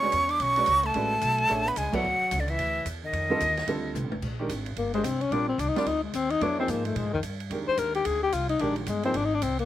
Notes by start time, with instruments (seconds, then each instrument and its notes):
Already playing: upright bass D2, tenor saxophone C#4, flute C#6
0.01 upright piano G#3 C#4 F#4 B4 D5
0.12 upright bass E2, hi-hat pedal, ride
0.29 tenor saxophone D4, flute D6, ride
0.40 upright bass B1, tenor saxophone C#4, flute C#6, ride
0.56 upright piano G#3 C#4 F#4 B4 D5, ride
0.66 upright bass C#2, hi-hat pedal, ride
0.83 tenor saxophone A3, flute A5, ride
0.94 upright bass A1, upright piano G#3 C#4 F#4 B4 D5, ride
1.22 upright bass B1, hi-hat pedal, ride
1.38 ride
1.48 upright bass A1, upright piano A3 D4 G#4 C#5 E5, ride
1.66 tenor saxophone B3, flute B5
1.76 upright bass C#2, tenor saxophone G#3, flute G#5, hi-hat pedal, ride
1.92 upright piano F#3 B3 E4 A4 D5, tenor saxophone F#3, flute F#5, kick, crash
2.04 upright bass D2
2.21 muted upright bass stroke
2.31 upright bass C#2, hi-hat pedal, ride
2.39 tenor saxophone D3, flute D5
2.48 tenor saxophone E3, flute E5, ride
2.58 upright bass D2, ride
2.85 upright bass E2, hi-hat pedal, ride
3.04 tenor saxophone D#3, flute D#5
3.13 upright bass F2, ride
3.29 upright piano D3 G3 C4 F4 A4
3.40 upright bass D#2, hi-hat pedal, ride
3.57 snare, ride
3.67 upright bass D2, upright piano D3 G3 C4 F4 A4, ride
3.95 upright bass C2, hi-hat pedal, high tom
4.04 upright bass A1
4.12 upright bass F1, high tom
4.22 upright bass A#1, kick, crash
4.39 upright piano D#3 G#3 D4 G4 A#4
4.49 upright bass G#1, hi-hat pedal, ride
4.66 ride
4.76 upright bass G1, tenor saxophone A#3, ride
4.94 tenor saxophone G#3, upright piano G#3 D4 G4 C5 D#5, ride
5.03 upright bass C2, tenor saxophone C4, hi-hat pedal, ride
5.21 tenor saxophone C#4, ride
5.31 upright bass A#1, upright piano G3 C4 F4 A#4 D5, tenor saxophone D4, ride
5.49 tenor saxophone C4
5.58 upright bass C2, tenor saxophone D4, hi-hat pedal, ride
5.68 tenor saxophone D#4
5.76 upright piano G3 C4 F4 A#4 D5, tenor saxophone D4, snare, ride
5.86 upright bass D2, tenor saxophone D#4, ride
6.04 tenor saxophone G#3
6.13 upright bass D#2, tenor saxophone C4, hi-hat pedal, ride
6.30 tenor saxophone D#4, ride
6.41 upright bass F2, upright piano F#3 B3 E4 A4 C#5, tenor saxophone D4, ride
6.58 upright piano F3 A#3 D#4 G#4 C5, tenor saxophone C4
6.68 upright bass G#2, tenor saxophone A#3, hi-hat pedal, ride
6.85 tenor saxophone A3, ride
6.96 upright bass A#2, tenor saxophone G#3, ride
7.05 upright bass G#2
7.13 upright bass F2, tenor saxophone D#3
7.23 upright bass G2, hi-hat pedal, ride
7.40 ride
7.50 upright bass F2, upright piano D#3 G#3 D4 G4 A#4, ride
7.68 tenor saxophone C5, muted upright bass stroke
7.78 upright bass D#2, tenor saxophone A#4, hi-hat pedal, ride
7.95 tenor saxophone G4, ride
8.05 upright bass D2, tenor saxophone G#4, ride
8.23 tenor saxophone G4
8.32 upright bass C2, tenor saxophone F4, hi-hat pedal, ride
8.49 tenor saxophone D#4, ride
8.59 upright bass A#1, upright piano D#3 G#3 D4 G4 A#4, tenor saxophone D4, ride
8.76 tenor saxophone F3, ride
8.87 upright bass G1, tenor saxophone G#3, hi-hat pedal, ride
9.03 upright piano F3 A#3 D#4 G#4 C5, tenor saxophone C4, ride
9.14 upright bass G#1, tenor saxophone D4, ride
9.25 tenor saxophone D#4
9.35 tenor saxophone D4
9.42 upright bass C2, tenor saxophone C4, hi-hat pedal, ride
9.59 tenor saxophone A#3, ride